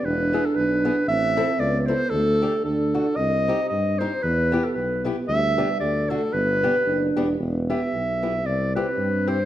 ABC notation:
X:1
M:2/4
L:1/16
Q:"Swing" 1/4=114
K:G
V:1 name="Clarinet"
B3 A B4 | e4 d3/2 d/2 c2 | A4 A4 | _e4 e2 c2 |
B3 A B2 z2 | e4 d2 A2 | B6 z2 | [K:Em] z2 e6 |
d2 B4 c2 |]
V:2 name="Steel-string acoustic guitar"
z2 [B,E^G]2 z2 [B,EG]2 | z2 [CEA]2 z2 [CEA]2 | z2 [A,DG]2 z2 [A,DF]2 | z2 [C_EG]2 z2 [CEG]2 |
z2 [B,EG]2 z2 [B,EG]2 | z2 [B,DG]2 z2 [A,DF]2 | z2 [B,DG]2 z2 [B,DG]2 | [K:Em] z2 [B,EG]2 z2 [B,EG]2 |
z2 [CEG]2 z2 [CEG]2 |]
V:3 name="Euphonium"
D8 | C4 B,4 | A,4 D4 | C6 z2 |
B,8 | G,4 A,4 | B,4 D4 | [K:Em] B,8 |
C8 |]
V:4 name="Tuba" clef=bass
E,,,4 B,,,4 | A,,,4 ^C,,4 | D,,4 D,,4 | C,,4 G,,4 |
E,,4 B,,,4 | D,,4 D,,4 | G,,,4 F,,,2 E,,,2 | [K:Em] E,,,4 B,,,4 |
C,,4 G,,4 |]